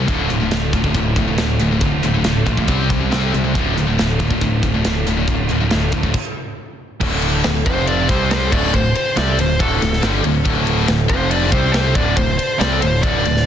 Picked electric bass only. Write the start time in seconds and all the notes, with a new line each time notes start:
0.08 D1
0.30 D1
0.52 D1
0.74 D1
0.95 D1
1.16 D1
1.39 D1
1.60 D1
1.81 D1
2.04 D1
2.25 D1
2.47 A#1
2.69 C2
2.90 C2
3.12 C2
3.34 C2
3.56 D1
3.78 D1
3.99 D1
4.20 D1
4.41 D1
4.63 D1
4.85 D1
5.07 D1
5.28 D1
5.51 D1
5.73 D1
5.93 D1
7.01 D1
7.46 D1
7.66 F1
8.09 C2
8.52 D1
8.74 D1
9.18 C2
9.39 D1
9.60 D1
9.82 D1
10.03 G1
10.24 D1
10.45 D1
10.88 D1
11.10 F1
11.52 C2
11.96 D1
12.17 D1
12.60 C2
12.82 D1
13.03 D1
13.26 D1